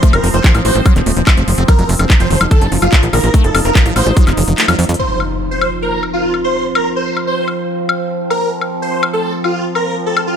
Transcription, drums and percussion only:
0.03 kick, closed hi-hat
0.13 closed hi-hat, high woodblock
0.24 open hi-hat
0.34 closed hi-hat
0.44 kick, clap, closed hi-hat
0.55 closed hi-hat, high woodblock
0.65 open hi-hat
0.75 closed hi-hat
0.86 kick, closed hi-hat, high woodblock
0.96 clap, closed hi-hat
1.06 open hi-hat
1.17 closed hi-hat
1.27 kick, clap, closed hi-hat, high woodblock
1.37 closed hi-hat
1.48 open hi-hat
1.58 closed hi-hat
1.68 kick, closed hi-hat, high woodblock
1.79 closed hi-hat
1.89 open hi-hat
1.99 closed hi-hat, high woodblock
2.10 kick, clap, closed hi-hat
2.20 closed hi-hat
2.30 open hi-hat
2.41 closed hi-hat, high woodblock
2.51 kick, closed hi-hat
2.61 closed hi-hat
2.72 open hi-hat
2.82 closed hi-hat, high woodblock
2.92 kick, clap, closed hi-hat
3.03 closed hi-hat
3.13 open hi-hat, high woodblock
3.24 closed hi-hat
3.34 kick, closed hi-hat
3.44 closed hi-hat
3.55 open hi-hat, high woodblock
3.65 closed hi-hat
3.75 kick, clap, closed hi-hat
3.86 closed hi-hat
3.96 open hi-hat, high woodblock
4.06 closed hi-hat
4.17 kick, closed hi-hat
4.27 clap, closed hi-hat, high woodblock
4.37 open hi-hat
4.48 closed hi-hat
4.58 clap, closed hi-hat
4.68 closed hi-hat, high woodblock
4.79 closed hi-hat, open hi-hat
4.84 closed hi-hat
4.89 closed hi-hat
4.94 closed hi-hat
5.20 high woodblock
5.61 high woodblock
6.03 high woodblock
6.34 high woodblock
6.75 high woodblock
7.17 high woodblock
7.48 high woodblock
7.89 high woodblock
8.30 high woodblock
8.61 high woodblock
9.03 high woodblock
9.44 high woodblock
9.75 high woodblock
10.17 high woodblock

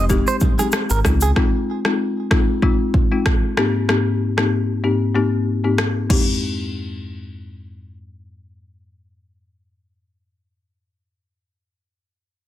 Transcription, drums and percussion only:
0.09 kick, low conga, shaker
0.27 shaker
0.40 kick, high conga, shaker
0.59 high conga, shaker
0.72 cross-stick, shaker
0.90 shaker
1.05 kick, cross-stick, high conga, low conga, shaker
1.21 shaker
1.36 kick, cross-stick
1.85 cross-stick
2.31 kick, cross-stick
2.62 kick
2.94 kick
3.26 kick, cross-stick
3.57 cross-stick
3.89 cross-stick
4.38 cross-stick
5.78 cross-stick
6.10 kick, crash

